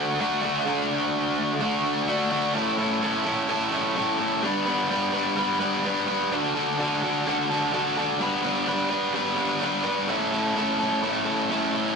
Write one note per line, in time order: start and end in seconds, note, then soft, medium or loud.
0.00 0.18 D3 loud
0.00 0.20 A3 loud
0.00 0.20 D4 loud
0.00 0.20 F#4 loud
0.19 0.64 D3 medium
0.19 0.45 A3 medium
0.19 0.43 D4 medium
0.19 0.41 F#4 medium
0.42 0.66 A3 medium
0.42 0.66 D4 medium
0.42 0.67 F#4 medium
0.66 1.59 D3 medium
0.66 1.60 A3 medium
0.66 1.61 D4 loud
0.66 1.62 F#4 medium
1.60 2.06 D3 loud
1.60 2.07 A3 loud
1.60 2.08 D4 loud
1.60 2.08 F#4 loud
2.07 2.53 D3 medium
2.07 2.32 A3 medium
2.07 2.31 D4 medium
2.07 2.29 F#4 medium
2.30 2.53 A3 medium
2.30 2.54 D4 medium
2.30 2.53 F#4 medium
2.54 3.02 A2 medium
2.54 3.01 A3 medium
2.54 2.79 C#4 medium
2.54 2.77 E4 medium
2.54 2.77 A4 loud
2.78 3.01 C#4 medium
2.78 3.03 E4 medium
2.78 3.04 A4 medium
3.02 3.48 A3 medium
3.02 3.27 C#4 medium
3.02 3.25 E4 medium
3.02 3.25 A4 medium
3.25 3.48 C#4 medium
3.25 3.49 E4 medium
3.25 3.50 A4 medium
3.48 3.94 A2 medium
3.48 3.95 A3 loud
3.48 3.73 C#4 loud
3.48 3.72 E4 loud
3.48 3.71 A4 loud
3.71 3.96 C#4 medium
3.71 3.96 E4 medium
3.71 3.97 A4 medium
3.95 4.41 A2 medium
3.95 4.42 A3 loud
3.95 4.20 C#4 medium
3.95 4.19 E4 loud
3.95 4.18 A4 loud
4.18 4.42 C#4 medium
4.18 4.42 E4 medium
4.18 4.44 A4 medium
4.42 4.89 G3 medium
4.42 4.66 B3 medium
4.42 4.68 D4 loud
4.42 4.65 B4 medium
4.66 4.91 B3 medium
4.66 4.91 D4 soft
4.66 4.92 B4 medium
4.90 5.35 G3 medium
4.90 5.14 B3 medium
4.90 5.16 D4 medium
4.90 5.12 B4 medium
5.14 5.37 B3 medium
5.14 5.37 D4 medium
5.14 5.38 B4 medium
5.37 5.83 G3 loud
5.37 5.60 B3 loud
5.37 5.63 D4 loud
5.37 5.59 B4 loud
5.60 5.85 B3 medium
5.60 5.85 D4 medium
5.60 5.86 B4 medium
5.84 6.30 G3 medium
5.84 6.08 B3 medium
5.84 6.09 D4 loud
5.84 6.06 B4 loud
6.07 6.31 B3 medium
6.07 6.32 D4 soft
6.07 6.30 B4 medium
6.31 6.77 D3 medium
6.31 6.57 D4 medium
6.31 6.55 F#4 medium
6.31 6.54 A4 medium
6.55 6.79 D4 medium
6.55 6.79 F#4 medium
6.55 6.80 A4 medium
6.78 7.25 D3 medium
6.78 7.05 D4 medium
6.78 7.03 F#4 medium
6.78 7.02 A4 medium
7.02 7.26 D4 medium
7.02 7.27 F#4 medium
7.02 7.29 A4 medium
7.26 7.72 D3 loud
7.26 7.51 D4 loud
7.26 7.50 F#4 loud
7.26 7.49 A4 loud
7.50 7.73 D4 medium
7.50 7.74 F#4 medium
7.50 7.75 A4 medium
7.73 8.19 D3 medium
7.73 7.98 D4 loud
7.73 7.97 F#4 medium
7.73 7.97 A4 loud
7.98 8.20 D4 medium
7.98 8.20 F#4 medium
7.98 8.22 A4 medium
8.19 8.65 G3 medium
8.19 8.43 B3 loud
8.19 8.44 D4 loud
8.19 8.42 B4 loud
8.43 8.67 B3 medium
8.43 8.66 D4 medium
8.43 8.68 B4 medium
8.66 9.12 G3 medium
8.66 8.91 B3 medium
8.66 8.92 D4 medium
8.66 8.89 B4 medium
8.90 9.14 B3 medium
8.90 9.14 D4 medium
8.90 9.16 B4 medium
9.14 9.60 G3 medium
9.14 9.37 B3 loud
9.14 9.38 D4 loud
9.14 9.36 B4 loud
9.37 9.62 B3 medium
9.37 9.61 D4 medium
9.37 9.63 B4 medium
9.61 10.07 G3 medium
9.61 9.85 B3 loud
9.61 9.85 D4 medium
9.61 9.83 B4 loud
9.84 10.07 B3 medium
9.84 10.08 D4 medium
9.84 10.07 B4 medium
10.08 10.55 A2 loud
10.08 10.55 A3 medium
10.08 10.34 C#4 medium
10.08 10.32 E4 medium
10.08 10.31 A4 medium
10.32 10.55 C#4 medium
10.32 10.56 E4 medium
10.32 10.58 A4 medium
10.56 11.02 A3 medium
10.56 10.80 C#4 medium
10.56 10.79 E4 medium
10.56 10.78 A4 medium
10.79 11.02 C#4 medium
10.79 11.03 E4 medium
10.79 11.04 A4 medium
11.02 11.49 A2 loud
11.02 11.50 A3 loud
11.02 11.27 C#4 loud
11.02 11.26 E4 loud
11.02 11.25 A4 loud
11.25 11.50 C#4 medium
11.25 11.50 E4 medium
11.25 11.52 A4 medium
11.50 11.95 A2 loud
11.50 11.96 A3 loud
11.50 11.75 C#4 loud
11.50 11.73 E4 loud
11.50 11.73 A4 medium
11.73 11.96 C#4 medium
11.73 11.96 E4 medium
11.73 11.96 A4 medium